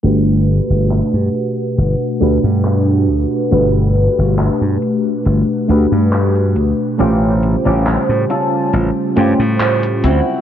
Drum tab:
HH |x-x-x-x-x-x-xxx-|x-x-x-x-x-x-xxx-|x-x-x-x-x-x-xxx-|
CP |----x-------x---|----x-------x---|----x-------x---|